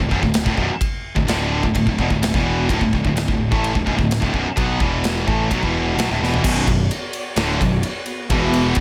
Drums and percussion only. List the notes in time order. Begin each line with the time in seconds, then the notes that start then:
0.00 kick
0.11 kick
0.23 kick
0.34 snare, ride bell
0.46 kick
0.57 kick
0.81 kick, ride bell
1.16 kick
1.28 snare, ride bell
1.63 kick
1.75 kick, ride bell
1.87 kick
1.99 kick
2.10 kick
2.23 snare, ride bell
2.34 kick
2.69 kick, ride bell
2.81 kick
2.93 kick
3.05 kick
3.17 snare, ride bell
3.28 kick
3.52 kick
3.64 ride bell
3.75 kick
3.87 kick
3.99 kick
4.11 snare, ride bell
4.22 kick
4.34 kick
4.57 kick, ride bell
4.80 kick
5.04 snare, ride bell
5.28 kick
5.51 kick, ride bell
5.63 kick
5.99 snare, ride bell
6.24 snare
6.34 floor tom
6.44 kick, crash
6.67 kick, ride
6.91 ride
7.13 ride
7.36 snare, ride
7.61 kick, ride
7.83 ride
8.06 ride
8.30 kick, ride
8.53 ride
8.75 kick, ride